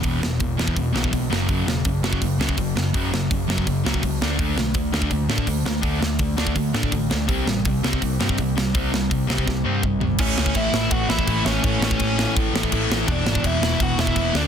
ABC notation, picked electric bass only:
X:1
M:4/4
L:1/8
Q:1/4=166
K:A
V:1 name="Picked electric bass" clef=bass
E,,, E,,, E,,, E,,, E,,, B,,, B,,, F,,, | F,,, E,,, F,,, F,,, F,,, C,, F,,, F,,, | F,,, F,,, F,,, F,,, F,,, C,, C,, D,, | D,, B,,, D,, D,, D,, A,, D,, D,, |
D,, D,, D,, D,, D,, A,, A,,, D,, | =C,, A,,, C,, C,, C,, =G,, C,, C,, | =C,, C,, C,, C,, C,, =G,, =G,,, G,,, | A,,, C,, A,,, A,,, A,,, A,,, A,,, A,,, |
A,,, A,,, A,,,2 A,,, A,,, A,,, A,,, | E,,, G,,, E,,, E,,, E,,, E,,, E,,, D,, |]